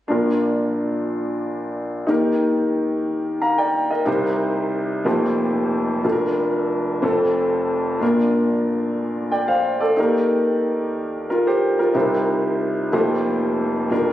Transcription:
0.08 2.05 A#1 soft
0.08 2.05 A#2 soft
0.08 2.04 D4 soft
0.08 2.05 F4 soft
0.08 2.05 A#4 soft
2.07 4.03 D#2 soft
2.07 4.03 D#3 soft
2.07 4.02 D#4 soft
2.07 4.03 G4 soft
2.07 3.39 A#4 medium
3.42 3.57 F5 soft
3.42 3.57 A#5 soft
3.58 3.90 D5 soft
3.58 3.89 G5 soft
3.91 4.22 A#4 soft
3.91 4.22 D#5 soft
4.05 5.02 C2 soft
4.05 5.02 C3 soft
4.05 5.04 D#4 medium
4.05 5.05 G4 soft
4.05 5.05 C5 medium
5.04 6.00 F1 medium
5.04 6.00 F2 medium
5.04 6.04 A#3 medium
5.04 6.04 D#4 soft
5.04 6.03 F4 medium
5.04 6.05 G4 soft
5.04 6.05 C5 medium
6.03 6.99 F1 soft
6.03 6.99 F2 soft
6.03 7.02 D4 soft
6.03 7.02 F4 soft
6.03 6.12 A4 soft
6.12 7.07 A#4 medium
7.02 7.97 F1 medium
7.02 7.98 F2 medium
7.02 8.01 C4 medium
7.02 8.00 F4 medium
7.02 8.02 A4 medium
7.99 9.94 A#1 medium
7.99 9.94 A#2 soft
7.99 9.93 D4 medium
7.99 9.94 F4 soft
7.99 9.31 A#4 medium
9.31 9.48 D5 soft
9.31 9.48 G5 medium
9.48 9.80 C5 medium
9.48 9.80 F5 medium
9.81 10.13 A4 soft
9.81 10.12 D5 medium
9.96 11.91 D#2 soft
9.96 11.91 D#3 soft
9.96 11.90 D#4 medium
9.96 11.27 G4 soft
9.96 11.28 A#4 medium
11.30 11.46 F4 soft
11.30 11.45 A#4 soft
11.47 11.78 G4 medium
11.47 11.78 C5 medium
11.79 12.10 F4 soft
11.79 12.10 A#4 medium
11.94 12.89 C2 soft
11.94 12.89 C3 soft
11.94 12.92 D#4 soft
11.94 12.92 G4 soft
11.94 12.93 C5 medium
12.92 13.87 F1 medium
12.92 13.87 F2 medium
12.92 12.99 A3 medium
12.92 13.91 D#4 medium
12.92 13.89 F4 medium
12.92 13.91 G4 medium
12.92 13.92 C5 medium
12.99 13.94 A#3 medium
13.90 14.13 F1 medium
13.90 14.13 F2 soft
13.90 14.13 D4 soft
13.90 14.13 F4 soft
13.90 14.13 A#4 medium

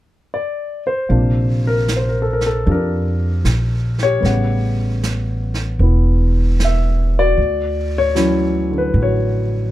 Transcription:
0.34 0.83 D5 medium
0.87 1.67 C5 medium
1.09 2.63 A#1 medium
1.09 4.25 C3 soft
1.09 4.24 A#3 soft
1.09 2.65 D4 soft
1.09 2.66 F4 soft
1.09 brush sweep soft
1.67 1.95 A#4 medium
1.88 snare soft
1.88 hi-hat pedal soft
1.96 2.07 C5 medium
2.09 2.19 A#4 medium
2.22 2.32 A4 medium
2.33 2.44 A#4 medium
2.41 snare soft
2.46 2.69 A4 medium
2.66 3.41 F2 medium
2.66 2.71 D4 soft
2.66 4.24 F4 soft
2.66 4.03 G4 soft
2.66 brush sweep soft
2.71 4.23 D4 soft
2.71 3.44 A#4 medium
3.45 4.19 A#1 medium
3.45 snare soft
3.45 hi-hat pedal soft
3.98 snare soft
4.03 6.33 G4 medium
4.03 6.32 C#5 medium
4.20 5.76 A1 medium
4.20 7.37 C#3 soft
4.20 7.36 G3 soft
4.20 5.79 B3 soft
4.20 brush sweep soft
4.20 snare soft
4.26 7.38 F#5 soft
5.03 snare soft
5.03 hi-hat pedal soft
5.54 snare soft
5.79 7.33 E1 medium
5.79 7.37 B3 soft
5.79 7.39 E4 soft
5.79 brush sweep soft
6.60 snare soft
6.60 hi-hat pedal soft
6.65 7.12 E5 medium
7.19 8.69 F#4 medium
7.19 7.97 D5 medium
7.37 8.90 D2 medium
7.37 brush sweep soft
7.98 8.69 C#5 medium
8.15 9.71 E3 soft
8.15 9.71 F#3 soft
8.15 9.71 C#4 soft
8.15 9.71 E4 medium
8.15 snare soft
8.15 hi-hat pedal soft
8.71 9.71 D3 soft
8.78 8.97 B4 medium
8.94 9.71 A1 medium
8.94 brush sweep soft
9.02 9.71 F#4 soft
9.02 9.71 C#5 medium

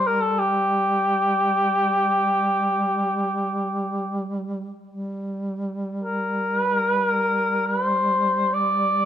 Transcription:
0.00 4.70 G3 soft
0.07 0.23 A#4 medium
0.21 0.40 A4 medium
0.39 4.32 G4 medium
4.87 9.05 G3 soft
6.04 6.60 A#4 medium
6.60 6.75 B4 medium
6.75 6.91 A#4 medium
6.91 7.06 B4 medium
7.06 7.68 A#4 medium
7.66 7.85 B4 medium
7.85 8.55 C5 medium
8.54 9.05 D5 medium

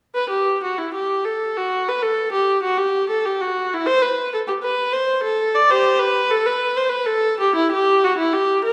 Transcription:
0.15 0.30 B4 medium
0.30 0.62 G4 medium
0.64 0.79 F#4 soft
0.78 0.94 E4 medium
0.94 1.25 G4 medium
1.25 1.56 A4 medium
1.57 1.88 F#4 medium
1.88 2.03 B4 medium
2.02 2.33 A4 medium
2.33 2.63 G4 medium
2.63 2.78 F#4 medium
2.77 3.09 G4 medium
3.10 3.25 A4 medium
3.25 3.41 G4 medium
3.41 3.71 F#4 medium
3.74 3.88 E4 medium
3.86 4.01 C5 medium
4.02 4.32 B4 medium
4.34 4.40 A4 medium
4.47 4.53 G4 medium
4.63 4.92 B4 medium
4.93 5.23 C5 medium
5.24 5.53 A4 medium
5.55 5.69 D5 medium
5.70 5.97 G4 medium
5.70 6.00 C5 medium
5.99 6.29 B4 medium
6.30 6.45 A4 medium
6.46 6.76 B4 medium
6.76 6.91 C5 medium
6.89 7.05 B4 medium
7.06 7.38 A4 medium
7.40 7.56 G4 medium
7.56 7.71 E4 medium
7.72 8.02 G4 medium
8.04 8.18 F#4 medium
8.18 8.33 E4 medium
8.33 8.64 G4 medium
8.65 8.73 A#4 medium

